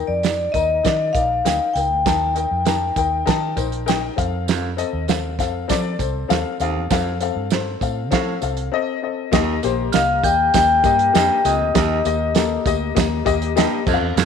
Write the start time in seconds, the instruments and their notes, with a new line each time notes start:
Already playing: upright piano D#3 D#4 A#4 G5
0.07 fingered electric bass F2, vibraphone D5
0.23 upright piano D#4 A#4 D5, snare, closed hi-hat, tambourine
0.52 fingered electric bass D#2, upright piano D#4 A#4 A#5, vibraphone D#5, kick, closed hi-hat
0.56 tambourine
0.83 fingered electric bass D#3, upright piano D#4 A#4 D5, kick, snare, closed hi-hat, tambourine
1.13 fingered electric bass A#1, upright piano D#4 A#4 D5, vibraphone F5, kick, closed hi-hat, tambourine
1.45 fingered electric bass D2, upright piano D#4 A#4 G5, snare, closed hi-hat, tambourine
1.73 fingered electric bass C#2, upright piano D#4 A#4 G5, vibraphone G5, closed hi-hat, tambourine
1.91 fingered electric bass D2
2.05 fingered electric bass D#2, upright piano D#3 D#4 A#4 A5, kick, snare, closed hi-hat, tambourine
2.35 upright piano D#4 A#4 G5, closed hi-hat, tambourine
2.51 fingered electric bass F2
2.65 upright piano D#4 A#4 A5, snare, closed hi-hat, tambourine
2.96 fingered electric bass D#2, upright piano D#4 A#4 G5, kick, closed hi-hat, tambourine
3.26 fingered electric bass D#3, upright piano D#4 A#4 A5, kick, snare, closed hi-hat, tambourine
3.56 fingered electric bass A#1, upright piano D#4 A#4 C5, kick, closed hi-hat, tambourine
3.72 closed hi-hat
3.86 upright piano D#4 A#4 G5, snare, closed hi-hat, tambourine
4.16 fingered electric bass F2, upright piano C4 A4 F5, kick, closed hi-hat, tambourine
4.48 baritone saxophone F2, snare, closed hi-hat, tambourine
4.77 upright piano C4 A4 D#5, closed hi-hat, tambourine
4.93 fingered electric bass D#2
5.08 upright piano C4 A4 F5, snare, closed hi-hat, tambourine
5.39 fingered electric bass F2, upright piano C4 A4 F5, kick, snare, closed hi-hat, tambourine
5.68 fingered electric bass F3, upright piano C4 A4 D5, kick, snare, closed hi-hat, tambourine
5.99 fingered electric bass C2, upright piano C4 A4 C5, kick, closed hi-hat, tambourine
6.28 fingered electric bass D#2, upright piano C4 A4 F5, snare, closed hi-hat, tambourine
6.60 fingered electric bass D#2, baritone saxophone D#2, upright piano C4 A4 F5, closed hi-hat, tambourine
6.75 fingered electric bass E2
6.90 baritone saxophone F2, fingered electric bass F2, upright piano C4 A4 F5, kick, snare, closed hi-hat, tambourine
7.20 upright piano C4 A4 F5, closed hi-hat, tambourine
7.36 fingered electric bass G2
7.50 upright piano C4 A4 C5, snare, closed hi-hat, tambourine
7.81 fingered electric bass A2, upright piano C4 A4 F5, kick, closed hi-hat, tambourine
8.11 baritone saxophone A2, fingered electric bass F3, upright piano C4 A4 F5, kick, snare, closed hi-hat, tambourine
8.41 fingered electric bass C2, upright piano C4 A4 F5, closed hi-hat, tambourine
8.57 closed hi-hat
8.72 upright piano C4 A4 D#5
9.02 upright piano C4 A4 D#5
9.32 baritone saxophone D#2, fingered electric bass D#2, upright piano D#3 A#3 G4 D#5, kick, snare, closed hi-hat, tambourine
9.63 fingered electric bass A#1, upright piano A#3 G4 C5, closed hi-hat, tambourine
9.92 fingered electric bass C2, upright piano A#3 G4 D#5, vibraphone F5, glockenspiel F6, snare, closed hi-hat, tambourine
10.23 fingered electric bass D#2, upright piano A#3 G4 D#5, vibraphone G5, glockenspiel G6, kick, closed hi-hat, tambourine
10.54 fingered electric bass D#2, upright piano A#3 G4 D#5, vibraphone G5, glockenspiel G6, kick, snare, closed hi-hat, tambourine
10.83 fingered electric bass G2, upright piano A#3 G4 D#5, kick, closed hi-hat, tambourine
10.99 closed hi-hat
11.13 fingered electric bass F2, baritone saxophone G2, upright piano A#3 G4 D#5, snare, closed hi-hat, tambourine
11.44 fingered electric bass C#2, baritone saxophone F2, upright piano A#3 G4 D#5, vibraphone D#5, glockenspiel D#6, closed hi-hat, tambourine
11.61 fingered electric bass D2
11.74 fingered electric bass D#2, baritone saxophone D#2, upright piano D#3 A#3 G4 D#5, kick, snare, closed hi-hat, tambourine
12.05 fingered electric bass D#2, upright piano A#3 G4 D#5, closed hi-hat, tambourine
12.35 upright piano A#3 G4 A4, snare, closed hi-hat, tambourine
12.65 fingered electric bass D2, upright piano A#3 G4 D#5, kick, closed hi-hat, tambourine
12.95 fingered electric bass D#2, upright piano A#3 G4 D#5, kick, snare, closed hi-hat, tambourine
13.25 fingered electric bass D#2, upright piano A#3 G4 D#5, kick, closed hi-hat, tambourine
13.42 closed hi-hat
13.56 baritone saxophone G2, upright piano A#3 G4 D#5, snare, closed hi-hat, tambourine
13.86 fingered electric bass F2, baritone saxophone F2, upright piano C4 A4 D#5, kick, tambourine, crash
13.94 upright piano F5
14.01 fingered electric bass E2
14.16 fingered electric bass F2, baritone saxophone F2, snare, closed hi-hat, tambourine